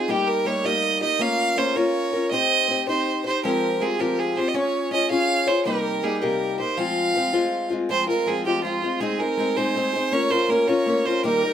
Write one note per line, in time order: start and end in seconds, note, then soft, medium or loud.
0.00 0.12 G#4 medium
0.08 0.44 G3 medium
0.08 0.45 A#3 medium
0.08 0.46 D#4 medium
0.08 0.29 G4 medium
0.08 0.47 G4 medium
0.28 0.48 A#4 medium
0.45 0.64 G3 medium
0.45 0.64 A#3 medium
0.45 0.63 D#4 medium
0.45 0.63 G4 medium
0.45 0.67 C#5 medium
0.64 1.02 G3 medium
0.64 1.02 A#3 medium
0.64 1.01 D#4 medium
0.64 1.00 G4 medium
0.64 1.02 D#5 loud
1.01 1.18 A#3 soft
1.01 1.20 D#4 medium
1.01 1.20 G4 medium
1.01 1.23 D#5 loud
1.19 1.55 A#3 medium
1.19 1.56 C#4 medium
1.19 1.58 F4 medium
1.19 1.58 A#4 medium
1.19 1.59 F5 loud
1.56 1.76 A#3 medium
1.56 1.76 C#4 medium
1.56 1.75 F4 medium
1.56 1.74 A#4 medium
1.56 1.77 C5 medium
1.76 2.14 A#3 medium
1.76 2.14 C#4 medium
1.76 2.13 F4 medium
1.76 2.12 A#4 medium
1.76 2.31 C#5 loud
2.13 2.32 C#4 soft
2.13 2.32 F4 soft
2.13 2.32 A#4 medium
2.31 2.67 C4 medium
2.31 2.68 D#4 medium
2.31 2.69 G4 medium
2.31 2.70 C5 medium
2.31 2.83 D#5 loud
2.68 2.87 C4 medium
2.68 2.88 D#4 medium
2.68 2.87 G4 medium
2.68 2.86 C5 medium
2.87 3.26 C4 medium
2.87 3.25 D#4 medium
2.87 3.25 G4 medium
2.87 3.23 C5 medium
3.24 3.44 D#4 soft
3.24 3.44 G4 soft
3.24 3.43 C5 medium
3.43 3.81 F3 medium
3.43 3.79 G#3 medium
3.43 3.80 C4 medium
3.43 3.81 F4 medium
3.43 3.82 G4 medium
3.43 3.83 A#4 medium
3.80 3.99 G#3 medium
3.80 3.99 C4 medium
3.80 3.98 F4 medium
3.80 3.98 G4 medium
3.80 4.02 G#4 medium
3.99 4.37 F3 medium
3.99 4.37 G#3 medium
3.99 4.37 C4 medium
3.99 4.36 F4 medium
3.99 4.34 G4 medium
3.99 4.20 A#4 medium
4.19 4.39 G#4 medium
4.36 4.54 C4 soft
4.36 4.54 F4 medium
4.36 4.55 G4 medium
4.36 4.50 C5 medium
4.48 4.56 D#5 medium
4.54 4.90 C#4 medium
4.54 4.91 F4 medium
4.54 4.92 G#4 medium
4.54 4.92 C#5 medium
4.54 4.93 C#5 medium
4.91 5.10 C#4 medium
4.91 5.10 F4 medium
4.91 5.09 G#4 medium
4.91 5.08 C#5 medium
4.91 5.10 D#5 medium
5.10 5.49 C#4 medium
5.10 5.48 F4 medium
5.10 5.47 G#4 medium
5.10 5.46 C#5 medium
5.10 5.49 F5 medium
5.47 5.66 F4 soft
5.47 5.67 G#4 soft
5.47 5.65 C5 medium
5.47 5.66 C#5 medium
5.65 6.03 C3 medium
5.65 6.01 G3 medium
5.65 6.03 A#3 medium
5.65 6.04 D#4 medium
5.65 6.04 G4 medium
5.65 6.05 A#4 medium
6.03 6.22 G3 medium
6.03 6.21 A#3 medium
6.03 6.21 D#4 medium
6.03 6.20 G4 medium
6.03 6.15 G#4 medium
6.15 6.24 G#4 medium
6.21 6.60 C3 soft
6.21 6.60 G3 medium
6.21 6.60 A#3 medium
6.21 6.58 D#4 medium
6.21 6.56 G4 medium
6.21 6.59 A#4 medium
6.58 6.78 A#3 soft
6.58 6.78 D#4 soft
6.58 6.77 G4 soft
6.58 6.79 C5 medium
6.77 7.13 F3 medium
6.77 7.15 G#3 medium
6.77 7.16 C4 medium
6.77 7.16 F4 medium
6.77 7.71 F5 loud
7.14 7.33 F3 medium
7.14 7.34 G#3 medium
7.14 7.33 C4 medium
7.14 7.32 F4 medium
7.33 7.72 F3 medium
7.33 7.72 G#3 medium
7.33 7.71 C4 medium
7.33 7.69 F4 medium
7.70 7.89 G#3 soft
7.70 7.90 C4 medium
7.70 7.89 F4 medium
7.89 8.08 F3 medium
7.89 8.08 G#3 medium
7.89 8.08 C4 medium
7.89 8.06 F4 medium
7.89 8.07 C5 medium
8.07 8.26 G#3 soft
8.07 8.27 C4 soft
8.07 8.26 F4 medium
8.07 8.29 A#4 medium
8.26 8.45 F3 medium
8.26 8.46 G#3 medium
8.26 8.45 C4 medium
8.26 8.44 F4 medium
8.26 8.45 G#4 medium
8.45 8.62 F3 medium
8.45 8.63 G#3 medium
8.45 8.64 C4 medium
8.45 8.64 F4 medium
8.45 8.63 G4 medium
8.63 8.82 F3 medium
8.63 8.83 G#3 medium
8.63 8.83 C4 medium
8.63 9.02 F4 medium
8.63 8.81 F4 medium
8.82 8.99 G#3 soft
8.82 9.00 C4 medium
8.82 9.01 F4 medium
9.00 9.19 G#3 medium
9.00 9.20 C4 medium
9.00 9.19 D#4 medium
9.00 9.21 G#4 medium
9.00 9.18 G#4 medium
9.19 9.37 C4 soft
9.19 9.38 D#4 soft
9.19 9.38 G#4 medium
9.19 9.59 A#4 medium
9.37 9.56 G#3 medium
9.37 9.57 C4 medium
9.37 9.56 D#4 medium
9.37 9.55 G#4 medium
9.56 9.73 G#3 medium
9.56 9.75 C4 medium
9.56 9.76 D#4 medium
9.56 9.75 G#4 medium
9.56 10.14 C5 medium
9.74 9.94 G#3 medium
9.74 9.94 C4 medium
9.74 9.94 D#4 medium
9.74 9.92 G#4 medium
9.93 10.12 C4 soft
9.93 10.13 D#4 soft
9.93 10.12 G#4 medium
10.12 10.31 A#3 medium
10.12 10.31 C#4 medium
10.12 10.31 F4 medium
10.12 10.29 A#4 medium
10.12 10.32 C#5 loud
10.30 10.49 C#4 soft
10.30 10.50 F4 soft
10.30 10.49 A#4 medium
10.30 10.51 C5 loud
10.49 10.68 A#3 medium
10.49 10.68 C#4 medium
10.49 10.67 F4 medium
10.49 10.69 A#4 medium
10.49 10.67 A#4 medium
10.68 10.85 A#3 medium
10.68 10.86 C#4 medium
10.68 10.87 F4 medium
10.68 10.87 A#4 medium
10.68 11.07 C#5 medium
10.86 11.05 A#3 medium
10.86 11.06 C#4 medium
10.86 11.06 F4 medium
10.86 11.04 A#4 medium
11.05 11.25 C#4 soft
11.05 11.25 F4 medium
11.05 11.24 A#4 medium
11.05 11.24 C5 medium
11.24 11.42 D#3 medium
11.24 11.43 G3 medium
11.24 11.43 A#3 medium
11.24 11.43 D#4 medium
11.24 11.53 A#4 loud
11.24 11.41 A#4 medium
11.42 11.53 G3 soft
11.42 11.53 D#4 soft
11.42 11.53 A#4 medium